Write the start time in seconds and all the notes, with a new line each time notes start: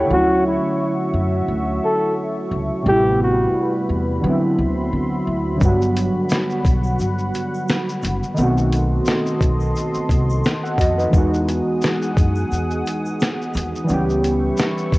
Already playing: E4 G4 A4 C#5 E5 F#5 G5 B5 C#6
0.07 D2 D3 F3 F#4 E5
0.11 A3 C#4 F#4
0.15 F#3 E4
0.47 E4
1.14 F#2
1.48 D2
1.85 A4
2.51 C#2
2.83 A1 C3 G3 B4 B5
2.87 A3 B3 G4
2.91 E4
3.23 F#4
3.89 E2
4.21 D3 F#3 F#4 E5 C6
4.25 B3 C4
4.29 E4
4.58 D2
4.93 D3
5.27 D2
5.56 D3 F#3
5.61 G1 G3 F#4 F#5, kick, shaker
5.62 B3 F#4, shaker
5.82 shaker
5.96 closed hi-hat, shaker
6.29 snare, shaker
6.50 shaker
6.65 B1, kick, closed hi-hat, shaker
6.84 shaker
6.99 G1, shaker
7.01 shaker
7.19 shaker
7.34 closed hi-hat, shaker
7.54 shaker
7.69 snare, shaker
7.71 shaker
7.89 shaker
8.02 F#1, closed hi-hat, shaker
8.05 shaker
8.23 shaker
8.34 D#3 A3 A4 D#5 C6, shaker
8.38 B1 B3 C4
8.43 F#4
8.58 shaker
8.73 closed hi-hat, shaker
9.05 snare, shaker
9.26 shaker
9.41 B1, kick, closed hi-hat, shaker
9.60 shaker
9.76 shaker
9.94 muted upright bass stroke, shaker
10.09 C2, kick, closed hi-hat, shaker
10.30 shaker
10.44 snare, shaker
10.47 shaker
10.63 A4 F#5, shaker
10.78 F2 F#4 D#5, kick, closed hi-hat, shaker
10.81 shaker
10.98 D#4 B4, shaker
11.09 E2 E3 G#3, shaker
11.13 B3 D#4 G#4 F#5 D#6, kick, shaker
11.17 F#4
11.34 shaker
11.48 closed hi-hat, shaker
11.81 snare, shaker
12.02 shaker
12.17 F#2, kick, closed hi-hat, shaker
12.35 shaker
12.51 E2, shaker
12.71 shaker
12.86 closed hi-hat, shaker
13.06 shaker
13.20 snare, shaker
13.23 shaker
13.42 shaker
13.54 D#2, closed hi-hat, shaker
13.57 shaker
13.76 shaker
13.84 E3 G3
13.89 C#2 B3 C#4 B4 E5 C#6, shaker
13.93 G4
14.10 shaker
14.24 closed hi-hat, shaker
14.57 snare, shaker
14.78 shaker
14.92 C#2, kick, closed hi-hat, shaker